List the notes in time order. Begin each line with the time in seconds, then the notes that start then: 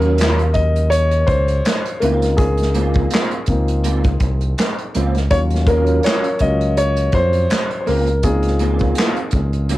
Already playing: D#2 F#3 C#4 F4 A#4
0.00 F4, closed hi-hat
0.18 F#3 C#4 F4, closed hi-hat
0.22 snare, clap
0.39 closed hi-hat
0.54 D#5, kick, closed hi-hat
0.76 closed hi-hat
0.90 C#5, closed hi-hat
1.11 closed hi-hat
1.27 C#2 C5, kick, closed hi-hat
1.48 closed hi-hat
1.65 muted clean electric guitar stroke, snare, clap, closed hi-hat
1.85 closed hi-hat
2.00 C#2 A#3 C4 D#4 F4 A#4, closed hi-hat
2.22 snare, closed hi-hat
2.37 G#4, kick, closed hi-hat
2.57 closed hi-hat
2.62 snare
2.74 A#3 C4 F4, closed hi-hat
2.94 kick, closed hi-hat
3.10 A#3 C4 F4, closed hi-hat
3.15 snare, clap
3.31 closed hi-hat
3.46 C#2 A#3 C4 D#4 F4, kick, closed hi-hat
3.68 closed hi-hat
3.84 A#3 C4 F4, closed hi-hat
4.04 kick, closed hi-hat
4.20 C2, kick, closed hi-hat
4.41 closed hi-hat
4.58 muted clean electric guitar stroke, snare, clap, closed hi-hat
4.78 closed hi-hat
4.95 C#2 A#3 C4 F4, closed hi-hat
5.15 snare, closed hi-hat
5.31 D#2 F#3 C#4 F4 C#5, kick, closed hi-hat
5.50 closed hi-hat
5.55 snare
5.67 F#3 C#4 F4 A#4, kick, closed hi-hat
5.86 closed hi-hat
6.03 F#3 C#4 F4 C#5, closed hi-hat
6.07 snare, clap
6.24 closed hi-hat
6.39 C#2 F#3 C#4 F4 D#5, kick, closed hi-hat
6.61 closed hi-hat
6.77 C#5, closed hi-hat
6.96 closed hi-hat
7.12 F2 C5, kick, closed hi-hat
7.33 closed hi-hat
7.50 muted clean electric guitar stroke, snare, clap, closed hi-hat
7.71 closed hi-hat
7.81 C5
7.86 C#2 A#3 C4 F4 A#4, open hi-hat
8.07 closed hi-hat
8.23 A#3 C4 D#4 F4 G#4, kick, closed hi-hat
8.42 closed hi-hat
8.47 snare
8.59 A#3 C4 F4, closed hi-hat
8.79 kick, closed hi-hat
8.95 A#3 C4, closed hi-hat
8.99 F4, snare, clap
9.16 closed hi-hat
9.31 C#2, kick, closed hi-hat
9.53 closed hi-hat
9.69 A#3 C4 F4, closed hi-hat